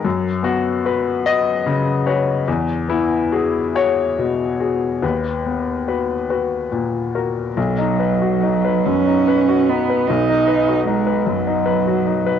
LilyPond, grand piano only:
\new Staff \with { instrumentName = "Grand piano" } { \time 6/8 \key b \major \tempo 4. = 48 << { r8 fis'4 dis''4 cis''8 | r8 e'4 cis''4. | b'2~ b'8 r8 | r2. |
r2. | } \\ { fis,8 b8 <fis' b'>8 <fis' b'>8 cis8 <fis' b'>8 | e,8 b8 <fis' gis'>8 <fis' gis'>8 b,8 <fis' gis'>8 | dis,8 b8 <fis' b'>8 <fis' b'>8 ais,8 <fis' ais'>8 | b,,16 dis'16 b'16 fis'16 dis'16 b'16 fis,16 dis'16 b'16 fis'16 dis'16 b'16 |
b,,16 dis'16 b'16 fis'16 dis'16 b'16 fis,16 dis'16 b'16 fis'16 dis'16 b'16 | } >> }